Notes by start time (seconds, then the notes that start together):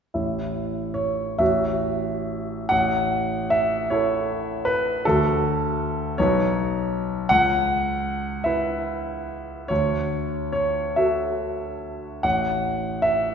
0.14 A1 E4 E5
0.94 C#5
1.39 A1 F#4 E5
2.69 A1 F#5
3.50 E5
3.90 E4 A4 C#5
4.65 B4
5.05 D2 F#4 A4
6.18 B1 D#4 B4 C#5
7.29 C#2 F#5
8.44 E4 B4 E5
9.68 D2 C#5
10.53 C#5
10.96 F#4 A4 E5
12.23 A1 F#5
13.02 E5